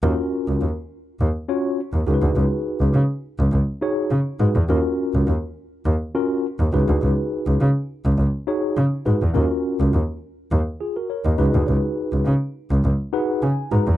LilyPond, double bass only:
\new Staff \with { instrumentName = "Double bass" } { \clef bass \time 4/4 \key ees \minor \tempo 4 = 103 ees,16 r8 des,16 ees,8 r8 ees,8 r8. ees,16 des,16 d,16 | des,8. des,16 des8 r16 des,16 des,8 r8 des16 r16 aes,16 fes,16 | ees,16 r8 des,16 ees,8 r8 ees,8 r8. ees,16 des,16 d,16 | des,8. des,16 des8 r16 des,16 des,8 r8 des16 r16 aes,16 fes,16 |
ees,16 r8 des,16 ees,8 r8 ees,8 r8. ees,16 des,16 d,16 | des,8. des,16 des8 r16 des,16 des,8 r8 des16 r16 aes,16 fes,16 | }